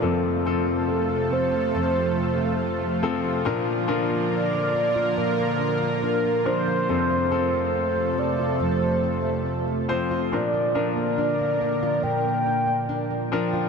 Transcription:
<<
  \new Staff \with { instrumentName = "Soft synth lead" } { \time 4/4 \key bes \major \tempo 4 = 70 a'4. c''8 c''4. r8 | r4 d''4 bes'4 bes'8 c''8~ | c''4. d''8 c''4. r8 | d''4 d''4 g''4. r8 | }
  \new Staff \with { instrumentName = "Grand piano" } { \time 4/4 \key bes \major <f c' a'>8 <f c' a'>2 r4 <f c' a'>8 | <f d' bes'>8 <f d' bes'>2 r4 <f d' bes'>8 | <f c' a'>8 <f c' a'>2 r4 <f c' c''>8 | <f d' bes'>8 <f d' bes'>2 r4 <f d' bes'>8 | }
  \new Staff \with { instrumentName = "Grand piano" } { \clef bass \time 4/4 \key bes \major <f, c>1 | bes,1 | <f, c>1 | bes,1 | }
  \new Staff \with { instrumentName = "Nylon-string guitar" } { \time 4/4 \key bes \major f,16 a16 c'16 a16 c'16 a16 c'16 f'16 f,16 a16 c'16 a16 c'16 a16 c'16 f'16 | bes,16 bes16 d'16 bes16 d'16 bes16 d'16 f'16 bes,16 bes16 d'16 bes16 d'16 bes16 d'16 f'16 | f,16 a16 c'16 a16 c'16 a16 c'16 f'16 f,16 a16 c'16 a16 c'16 a16 c'16 f'16 | bes,16 bes16 d'16 bes16 d'16 bes16 d'16 f'16 bes,16 bes16 d'16 bes16 d'16 bes16 d'16 f'16 | }
  \new Staff \with { instrumentName = "Analog synth pad" } { \time 4/4 \key bes \major << { <c a a'>1 | <d bes bes'>1 | <c a a'>1 | <d bes bes'>1 | } \\ { <f f'>1~ | <f f'>1~ | <f f'>1~ | <f f'>1 | } >> }
>>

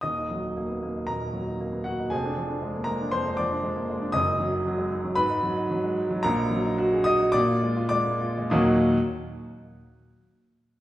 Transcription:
<<
  \new Staff \with { instrumentName = "Grand piano" } { \time 4/4 \key ees \minor \tempo 4 = 113 <ees'' ees'''>2 <bes' bes''>4. <ges' ges''>8 | <aes' aes''>4. <bes' bes''>8 <c'' c'''>8 <d'' d'''>4. | <ees'' ees'''>2 <ces'' ces'''>2 | <bes' bes''>4. <ees'' ees'''>8 <d'' d'''>4 <d'' d'''>4 |
<ees, bes, ges bes ees' ges' ees'''>8 r2. r8 | }
  \new Staff \with { instrumentName = "Grand piano" } { \time 4/4 \key ees \minor <ees,, ees,>16 ees'16 ges16 ees'16 bes16 ces'16 bes16 ees'16 bes,16 ees'16 ges16 ees'16 bes16 ces'16 bes16 ees'16 | <f,, f,>16 d'16 f16 d'16 aes16 bes16 aes16 d'16 f,16 aes16 f16 d'16 aes16 bes16 aes16 d'16 | <ges,, ges,>16 ees'16 ges16 ees'16 ges16 aes16 ees'16 ges16 aes,16 ees'16 ges16 ees'16 ges16 aes16 ees'16 ges16 | <bes,, bes,>16 ees'16 ges16 ees'16 ges'16 aes'16 ges'16 ees'16 bes,16 f'16 aes16 f'16 aes16 bes16 f'16 aes16 |
r1 | }
>>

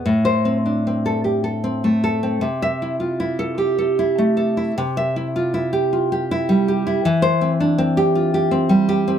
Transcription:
\new Staff \with { instrumentName = "Nylon-string guitar" } { \time 3/4 \key a \minor \tempo 4 = 78 << { r16 c''8 r2 r16 | r16 e''8 r2 r16 | r16 e''8 r2 r16 | r16 c''8 r2 r16 | } \\ { a,8 c'16 d'16 c'16 a'16 g'16 a'16 c'16 a16 a'16 c'16 | c8 e'16 f'16 e'16 a'16 g'16 a'16 e'16 a16 a'16 e'16 | c8 e'16 f'16 e'16 g'16 f'16 g'16 e'16 g16 g'16 e'16 | e8 c'16 d'16 c'16 g'16 f'16 g'16 c'16 g16 g'16 c'16 | } >> }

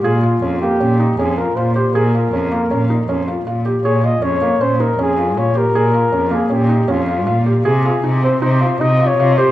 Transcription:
<<
  \new Staff \with { instrumentName = "Flugelhorn" } { \time 5/4 \key bes \dorian \tempo 4 = 158 f'4. g'4. aes'8 bes'8 c''8 c''8 | bes'1 r4 | des''8 ees''8 des''4 c''8 bes'8 aes'4 des''8 bes'8~ | bes'4. aes'8 g'4 f'4. r8 |
r8 aes'4 c''8 c''4 ees''8. des''8. c''8 | }
  \new Staff \with { instrumentName = "Felt piano" } { \time 5/4 \key bes \dorian aes'8 f'8 des'8 bes8 des'8 ees'8 des'8 f'8 f'8 g'8 | aes'8 f'8 des'8 bes8 des'8 ees'8 des'8 f'8 f'8 g'8 | aes'8 f'8 des'8 bes8 des'8 ees'8 des'8 f'8 f'8 g'8 | aes'8 f'8 des'8 bes8 des'8 ees'8 des'8 f'8 f'8 g'8 |
aes'8 f'8 ees'8 c'8 ees'8 f'8 ees'8 f'8 f'8 g'8 | }
  \new Staff \with { instrumentName = "Cello" } { \clef bass \time 5/4 \key bes \dorian bes,4 f,8 r8 bes,4 f,4 bes,4 | bes,4 f,8 r8 bes,4 f,4 bes,4 | bes,4 f,4 bes,4 f,4 bes,4 | bes,4 f,4 bes,4 f,4 bes,4 |
c4 c4 c4 c4 c4 | }
>>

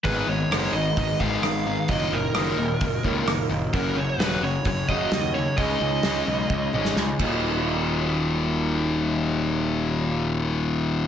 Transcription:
<<
  \new Staff \with { instrumentName = "Lead electric guitar" } { \time 4/4 \key ees \minor \tempo 4 = 130 ces''8 des''4 ees''4 f''4. | ees''8 bes'2. r8 | bes'8 des''16 ces''8. des''8 des''8 ees''4 des''8 | ees''2. r4 |
r1 | r1 | }
  \new Staff \with { instrumentName = "Clean electric guitar" } { \time 4/4 \key ees \minor <aes, ees aes ces' ees'>8 <aes ces' ees'>8 <aes, ees aes ces' ees'>8 <aes ces' ees'>4. <ees aes ces' ees'>8 <aes ces' ees'>8 | <ees, bes, ees ges bes ees'>8 <ees ges bes ees'>8 <ees, bes, ees ges bes ees'>8 <ees ges bes ees'>4. <ees ges bes ees'>8 <ees ges bes ees'>8 | <ges, des ges bes des' ges'>8 <ges des' ges'>8 <ges, des ges bes des' ges'>8 <ges bes des' ges'>4. <ges bes des' ges'>8 <ges bes des' ges'>8 | <des aes des' ees' aes'>8 <des' ees' aes'>8 <des aes des' ees' aes'>8 <des' ees' aes'>4. <aes des' ees' aes'>8 <ees, bes, ees ges bes ees'>8~ |
<ees, bes, ees ges bes ees'>1~ | <ees, bes, ees ges bes ees'>1 | }
  \new Staff \with { instrumentName = "Distorted electric guitar" } { \clef bass \time 4/4 \key ees \minor <aes, ees aes>8 <aes, ees>8 <aes, ees aes>8 <aes, ees>8 <aes, ees>8 <aes, ees aes>8 <aes, ees>8 <aes, ees>8 | <ees, bes, ees>8 <ees, bes,>8 <ees, bes, ees>8 <ees, bes,>8 <ees, bes,>8 <ees, bes, ees>8 <ees, bes,>8 <ees, bes,>8 | <ges, des ges>8 <ges, des>8 <ges, des ges>8 <ges, des>8 <ges, des>8 <ges, des ges>8 <ges, des>8 <ges, des>8 | <des aes des'>8 <des aes>8 <des aes des'>8 <des aes>8 <des aes>8 <des aes des'>8 <des aes>8 <ees, bes, ees>8~ |
<ees, bes, ees>1~ | <ees, bes, ees>1 | }
  \new Staff \with { instrumentName = "Picked electric bass" } { \clef bass \time 4/4 \key ees \minor aes,,8 aes,,8 ges,,8 aes,,8 aes,,8 aes,,8 aes,,4 | ges,,8 ges,,8 ges,,8 ees,,8 ges,,8 des,8 ges,,8 ges,,8 | ges,,8 ges,,8 ees,,8 ges,,8 ges,,8 ges,,8 ees,4 | des,8 des,8 des,8 ces,8 des,8 aes,,8 des,8 ees,,8~ |
ees,,1~ | ees,,1 | }
  \new DrumStaff \with { instrumentName = "Drums" } \drummode { \time 4/4 <hho bd>4 <hho ss>4 <hho bd>8 bd8 <hho ss>4 | <hho bd>4 <hho ss>4 <hho bd>8 bd8 <hho ss>4 | <hho bd>4 <hho sn>4 <hho bd>8 bd8 <hho sn>4 | <hho bd>4 <hho sn>4 bd8 toml16 sn16 sn8 <cymc bd>8 |
r4 r4 r4 r4 | r4 r4 r4 r4 | }
>>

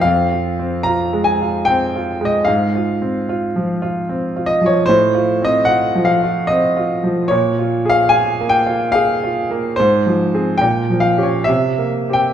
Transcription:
\new Staff \with { instrumentName = "Grand piano" } { \time 3/4 \key f \minor \tempo 4 = 74 << { f''4 bes''8 aes''8 g''8. ees''16 | f''2~ f''8 ees''16 des''16 | c''8. ees''16 ges''8 f''8 ees''4 | des''8. f''16 aes''8 g''8 f''4 |
c''4 g''8 f''16 des''16 e''8. g''16 | } \\ { \tuplet 3/2 { f,8 f'8 c'8 f'8 aes8 f'8 c'8 f'8 aes8 } | \tuplet 3/2 { aes,8 f'8 c'8 f'8 f8 f'8 c'8 f'8 f8 } | \tuplet 3/2 { a,8 f'8 c'8 f'8 f8 f'8 c'8 f'8 f8 } | \tuplet 3/2 { bes,8 f'8 aes'8 f'8 bes8 f'8 aes'8 f'8 bes8 } |
\tuplet 3/2 { aes,8 f8 <c' aes'>8 bes,8 f8 <des' g'>8 c8 bes8 <c' g'>8 } | } >> }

